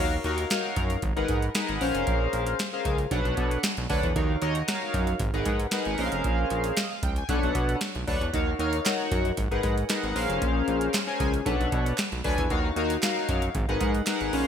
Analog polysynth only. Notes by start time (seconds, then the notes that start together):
0.00 D#4 F#4 A#4 C#5 F5
0.25 D#4 F#4 A#4 C#5 F5
0.51 D#4 F#4 A#4 C#5 F5
1.16 D#4 G#4 A#4 B4 F#5
1.55 D#4 G#4 A#4 B4 F#5
1.81 C#4 G#4 A#4 C5 F5
2.73 C#4 G#4 A#4 C5 F5
3.11 D4 A4 B4 C#5 F#5
3.89 D4 A4 B4 C#5 F#5
4.16 D#4 F#4 A#4 C#5 F5
4.42 D#4 F#4 A#4 C#5 D#5
4.67 D#4 F#4 A#4 C#5 D#5
4.75 F5
5.34 D#4 G#4 A#4 B4 F#5
5.73 D#4 G#4 A#4 B4 F#5
5.99 C#4 G#4 A#4 C5 D#5
6.06 F5
6.78 D#5
6.91 F5
7.03 G5
7.18 G#5
7.29 D4 A4 B4 C#5 F#5
8.07 D4 A4 B4 C#5 F#5
8.34 D#4 F#4 A#4 C#5 F5
8.59 D#4 F#4 A#4 C#5 F5
8.85 D#4 F#4 A#4 C#5 F#5
9.51 D#4 G#4 A#4 B4 F#5
9.89 D#4 G#4 A#4 B4 F#5
10.15 C#4 G#4 A#4 C5 F5
11.07 C#4 G#4 A#4 C5 G#5
11.45 D4 A4 B4 C#5 F#5
12.24 D4 A4 B4 C#5 G#5
12.50 D#4 F#4 A#4 C#5 F5
12.76 D#4 F#4 A#4 C#5 F5
13.02 D#4 F#4 A#4 C#5 F5
13.68 D#4 G#4 A#4 B4 F#5
14.07 D#4 G#4 A#4 B4 F#5
14.33 C#4 G#4 A#4 C5 F5